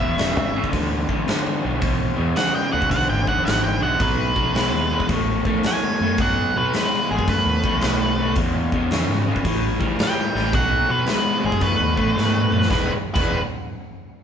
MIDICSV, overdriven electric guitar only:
0, 0, Header, 1, 2, 480
1, 0, Start_track
1, 0, Tempo, 544465
1, 1605, Time_signature, 4, 2, 24, 8
1, 12550, End_track
2, 0, Start_track
2, 0, Title_t, "Overdriven electric guitar"
2, 0, Program_c, 0, 29
2, 0, Note_on_c, 0, 40, 78
2, 0, Note_on_c, 0, 47, 82
2, 142, Note_off_c, 0, 40, 0
2, 143, Note_off_c, 0, 47, 0
2, 155, Note_on_c, 0, 40, 69
2, 162, Note_on_c, 0, 49, 83
2, 444, Note_off_c, 0, 40, 0
2, 447, Note_off_c, 0, 49, 0
2, 479, Note_on_c, 0, 40, 65
2, 489, Note_on_c, 0, 49, 76
2, 620, Note_off_c, 0, 40, 0
2, 627, Note_off_c, 0, 49, 0
2, 630, Note_on_c, 0, 40, 76
2, 631, Note_on_c, 0, 50, 97
2, 922, Note_off_c, 0, 40, 0
2, 922, Note_off_c, 0, 50, 0
2, 946, Note_on_c, 0, 40, 72
2, 950, Note_on_c, 0, 50, 72
2, 1100, Note_off_c, 0, 40, 0
2, 1102, Note_off_c, 0, 50, 0
2, 1111, Note_on_c, 0, 40, 67
2, 1119, Note_on_c, 0, 50, 84
2, 1403, Note_off_c, 0, 40, 0
2, 1407, Note_off_c, 0, 50, 0
2, 1429, Note_on_c, 0, 40, 67
2, 1434, Note_on_c, 0, 50, 78
2, 1583, Note_off_c, 0, 40, 0
2, 1585, Note_off_c, 0, 50, 0
2, 1594, Note_on_c, 0, 40, 79
2, 1602, Note_on_c, 0, 47, 88
2, 1886, Note_off_c, 0, 40, 0
2, 1890, Note_off_c, 0, 47, 0
2, 1900, Note_on_c, 0, 40, 78
2, 1909, Note_on_c, 0, 47, 70
2, 2059, Note_off_c, 0, 40, 0
2, 2064, Note_off_c, 0, 47, 0
2, 2071, Note_on_c, 0, 40, 74
2, 2075, Note_on_c, 0, 49, 85
2, 2365, Note_off_c, 0, 40, 0
2, 2367, Note_off_c, 0, 49, 0
2, 2390, Note_on_c, 0, 40, 69
2, 2393, Note_on_c, 0, 49, 76
2, 2545, Note_off_c, 0, 40, 0
2, 2546, Note_off_c, 0, 49, 0
2, 2562, Note_on_c, 0, 40, 70
2, 2569, Note_on_c, 0, 50, 96
2, 2851, Note_off_c, 0, 40, 0
2, 2854, Note_off_c, 0, 50, 0
2, 2883, Note_on_c, 0, 40, 68
2, 2888, Note_on_c, 0, 50, 80
2, 3027, Note_off_c, 0, 40, 0
2, 3032, Note_off_c, 0, 50, 0
2, 3037, Note_on_c, 0, 40, 78
2, 3042, Note_on_c, 0, 50, 74
2, 3329, Note_off_c, 0, 40, 0
2, 3332, Note_off_c, 0, 50, 0
2, 3357, Note_on_c, 0, 50, 78
2, 3362, Note_on_c, 0, 40, 70
2, 3509, Note_off_c, 0, 50, 0
2, 3512, Note_off_c, 0, 40, 0
2, 3522, Note_on_c, 0, 47, 77
2, 3524, Note_on_c, 0, 54, 85
2, 3812, Note_off_c, 0, 47, 0
2, 3813, Note_off_c, 0, 54, 0
2, 3841, Note_on_c, 0, 47, 73
2, 3841, Note_on_c, 0, 54, 83
2, 3992, Note_off_c, 0, 47, 0
2, 3992, Note_off_c, 0, 54, 0
2, 4015, Note_on_c, 0, 47, 79
2, 4022, Note_on_c, 0, 56, 83
2, 4299, Note_off_c, 0, 47, 0
2, 4303, Note_off_c, 0, 56, 0
2, 4335, Note_on_c, 0, 47, 78
2, 4340, Note_on_c, 0, 56, 77
2, 4480, Note_off_c, 0, 47, 0
2, 4482, Note_off_c, 0, 56, 0
2, 4501, Note_on_c, 0, 47, 81
2, 4503, Note_on_c, 0, 57, 82
2, 4783, Note_off_c, 0, 47, 0
2, 4784, Note_off_c, 0, 57, 0
2, 4815, Note_on_c, 0, 47, 71
2, 4820, Note_on_c, 0, 57, 89
2, 4960, Note_off_c, 0, 47, 0
2, 4962, Note_off_c, 0, 57, 0
2, 4984, Note_on_c, 0, 47, 76
2, 4990, Note_on_c, 0, 57, 75
2, 5264, Note_off_c, 0, 47, 0
2, 5267, Note_off_c, 0, 57, 0
2, 5306, Note_on_c, 0, 47, 67
2, 5310, Note_on_c, 0, 57, 73
2, 5446, Note_off_c, 0, 47, 0
2, 5448, Note_off_c, 0, 57, 0
2, 5466, Note_on_c, 0, 47, 86
2, 5469, Note_on_c, 0, 54, 93
2, 5746, Note_off_c, 0, 47, 0
2, 5747, Note_off_c, 0, 54, 0
2, 5785, Note_on_c, 0, 47, 66
2, 5789, Note_on_c, 0, 54, 81
2, 5925, Note_off_c, 0, 47, 0
2, 5927, Note_off_c, 0, 54, 0
2, 5947, Note_on_c, 0, 47, 82
2, 5957, Note_on_c, 0, 56, 88
2, 6226, Note_off_c, 0, 47, 0
2, 6231, Note_off_c, 0, 56, 0
2, 6268, Note_on_c, 0, 47, 68
2, 6274, Note_on_c, 0, 56, 78
2, 6407, Note_off_c, 0, 47, 0
2, 6410, Note_off_c, 0, 56, 0
2, 6417, Note_on_c, 0, 47, 84
2, 6426, Note_on_c, 0, 57, 80
2, 6701, Note_off_c, 0, 47, 0
2, 6706, Note_off_c, 0, 57, 0
2, 6741, Note_on_c, 0, 47, 72
2, 6752, Note_on_c, 0, 57, 78
2, 6883, Note_off_c, 0, 47, 0
2, 6889, Note_off_c, 0, 57, 0
2, 6900, Note_on_c, 0, 47, 81
2, 6905, Note_on_c, 0, 57, 83
2, 7183, Note_off_c, 0, 47, 0
2, 7185, Note_off_c, 0, 57, 0
2, 7216, Note_on_c, 0, 47, 74
2, 7222, Note_on_c, 0, 57, 86
2, 7361, Note_off_c, 0, 47, 0
2, 7364, Note_off_c, 0, 57, 0
2, 7379, Note_on_c, 0, 40, 82
2, 7385, Note_on_c, 0, 47, 86
2, 7662, Note_off_c, 0, 40, 0
2, 7665, Note_off_c, 0, 47, 0
2, 7692, Note_on_c, 0, 40, 82
2, 7703, Note_on_c, 0, 47, 77
2, 7838, Note_off_c, 0, 40, 0
2, 7844, Note_off_c, 0, 47, 0
2, 7855, Note_on_c, 0, 40, 80
2, 7857, Note_on_c, 0, 49, 86
2, 8139, Note_off_c, 0, 40, 0
2, 8140, Note_off_c, 0, 49, 0
2, 8173, Note_on_c, 0, 40, 67
2, 8179, Note_on_c, 0, 49, 75
2, 8319, Note_off_c, 0, 40, 0
2, 8321, Note_off_c, 0, 49, 0
2, 8327, Note_on_c, 0, 45, 78
2, 8329, Note_on_c, 0, 52, 91
2, 8615, Note_off_c, 0, 45, 0
2, 8616, Note_off_c, 0, 52, 0
2, 8636, Note_on_c, 0, 45, 73
2, 8643, Note_on_c, 0, 55, 75
2, 8789, Note_off_c, 0, 45, 0
2, 8793, Note_off_c, 0, 55, 0
2, 8803, Note_on_c, 0, 45, 84
2, 8804, Note_on_c, 0, 55, 88
2, 9092, Note_off_c, 0, 45, 0
2, 9092, Note_off_c, 0, 55, 0
2, 9124, Note_on_c, 0, 45, 69
2, 9129, Note_on_c, 0, 55, 79
2, 9273, Note_off_c, 0, 45, 0
2, 9275, Note_off_c, 0, 55, 0
2, 9283, Note_on_c, 0, 47, 80
2, 9291, Note_on_c, 0, 54, 97
2, 9571, Note_off_c, 0, 47, 0
2, 9575, Note_off_c, 0, 54, 0
2, 9596, Note_on_c, 0, 47, 66
2, 9597, Note_on_c, 0, 54, 76
2, 9740, Note_off_c, 0, 47, 0
2, 9749, Note_off_c, 0, 54, 0
2, 9750, Note_on_c, 0, 47, 82
2, 9754, Note_on_c, 0, 56, 87
2, 10044, Note_off_c, 0, 47, 0
2, 10046, Note_off_c, 0, 56, 0
2, 10062, Note_on_c, 0, 47, 62
2, 10068, Note_on_c, 0, 56, 69
2, 10220, Note_off_c, 0, 47, 0
2, 10223, Note_off_c, 0, 56, 0
2, 10231, Note_on_c, 0, 47, 81
2, 10231, Note_on_c, 0, 57, 87
2, 10523, Note_off_c, 0, 47, 0
2, 10523, Note_off_c, 0, 57, 0
2, 10546, Note_on_c, 0, 47, 75
2, 10548, Note_on_c, 0, 57, 81
2, 10698, Note_off_c, 0, 47, 0
2, 10702, Note_off_c, 0, 57, 0
2, 10709, Note_on_c, 0, 47, 70
2, 10718, Note_on_c, 0, 57, 87
2, 11001, Note_off_c, 0, 47, 0
2, 11005, Note_off_c, 0, 57, 0
2, 11019, Note_on_c, 0, 47, 72
2, 11025, Note_on_c, 0, 57, 74
2, 11172, Note_off_c, 0, 47, 0
2, 11176, Note_on_c, 0, 52, 83
2, 11179, Note_off_c, 0, 57, 0
2, 11185, Note_on_c, 0, 59, 87
2, 11189, Note_on_c, 0, 62, 90
2, 11192, Note_on_c, 0, 68, 107
2, 11198, Note_on_c, 0, 71, 102
2, 11379, Note_off_c, 0, 52, 0
2, 11383, Note_off_c, 0, 59, 0
2, 11385, Note_off_c, 0, 62, 0
2, 11387, Note_off_c, 0, 68, 0
2, 11390, Note_off_c, 0, 71, 0
2, 11592, Note_on_c, 0, 52, 87
2, 11592, Note_on_c, 0, 59, 94
2, 11596, Note_on_c, 0, 62, 93
2, 11600, Note_on_c, 0, 68, 108
2, 11604, Note_on_c, 0, 71, 100
2, 11772, Note_off_c, 0, 52, 0
2, 11772, Note_off_c, 0, 59, 0
2, 11774, Note_off_c, 0, 62, 0
2, 11776, Note_off_c, 0, 68, 0
2, 11778, Note_off_c, 0, 71, 0
2, 12550, End_track
0, 0, End_of_file